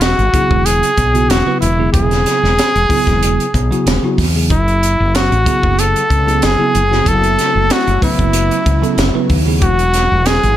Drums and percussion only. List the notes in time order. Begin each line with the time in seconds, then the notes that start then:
0.01 snare, closed hi-hat
0.19 closed hi-hat
0.34 kick, closed hi-hat
0.51 kick
0.66 closed hi-hat
0.83 closed hi-hat
0.97 kick, closed hi-hat
1.15 closed hi-hat
1.30 snare, closed hi-hat
1.62 closed hi-hat
1.94 kick, closed hi-hat
2.11 snare, closed hi-hat
2.26 snare, closed hi-hat
2.44 snare
2.59 snare, closed hi-hat
2.76 closed hi-hat
2.90 kick, open hi-hat
3.07 kick, snare, closed hi-hat
3.23 closed hi-hat
3.40 closed hi-hat
3.54 kick, closed hi-hat
3.72 closed hi-hat
3.87 snare, closed hi-hat
4.18 kick, snare, open hi-hat
4.50 kick, closed hi-hat
4.68 closed hi-hat
4.83 closed hi-hat
5.15 snare, closed hi-hat
5.32 closed hi-hat
5.46 kick, closed hi-hat
5.63 kick
5.79 closed hi-hat
5.96 closed hi-hat
6.10 kick, closed hi-hat
6.28 closed hi-hat
6.42 snare, closed hi-hat
6.75 closed hi-hat
6.92 snare
7.06 kick, closed hi-hat
7.23 closed hi-hat
7.39 snare, closed hi-hat
7.70 snare, closed hi-hat
7.88 closed hi-hat
8.02 kick, open hi-hat
8.19 kick, closed hi-hat
8.33 closed hi-hat
8.51 closed hi-hat
8.66 kick, closed hi-hat
8.83 closed hi-hat
8.98 snare, closed hi-hat
9.30 kick, open hi-hat
9.62 kick, closed hi-hat
9.79 closed hi-hat
9.94 snare, closed hi-hat
10.26 snare, closed hi-hat
10.43 closed hi-hat